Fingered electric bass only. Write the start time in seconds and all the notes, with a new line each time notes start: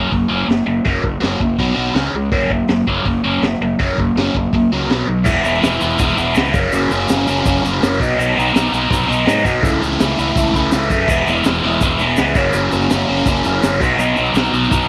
0.12 F#1
0.30 F#1
0.48 F#1
0.67 F#1
0.86 F#1
1.03 F#1
1.21 F#1
1.41 F#1
1.58 B1
1.77 B1
1.94 C#2
2.14 C#2
2.32 F#1
2.50 F#1
2.69 F#1
2.87 F#1
3.06 F#1
3.25 F#1
3.42 F#1
3.60 F#1
3.80 F#1
3.98 F#1
4.15 F#1
4.35 F#1
4.53 F#1
4.71 C#2
4.89 B1
5.08 B1
5.26 E1
5.45 E1
5.63 E1
5.82 E1
5.99 E1
6.17 E1
6.36 C#2
6.54 F#1
6.73 F#1
6.91 F#1
7.10 F#1
7.28 F#1
7.46 F#1
7.64 F#1
7.83 F#1
8.00 B1
8.18 B1
8.38 B1
8.55 B1
8.72 B1
8.91 B1
9.09 B1
9.27 G#2
9.45 B1
9.63 C#2
9.83 C#2
10.01 C#2
10.19 C#2
10.36 C#2
10.54 C#2
10.73 C#2
10.90 F#2
11.08 E1
11.27 E1
11.46 E1
11.64 E1
11.81 E1
12.00 E1
12.19 C#2
12.35 F#1
12.53 F#1
12.73 F#1
12.91 F#1
13.09 F#1
13.26 F#1
13.45 F#1
13.63 F#1
13.81 B1
13.98 B1
14.18 B1
14.34 B1
14.52 B1
14.72 B1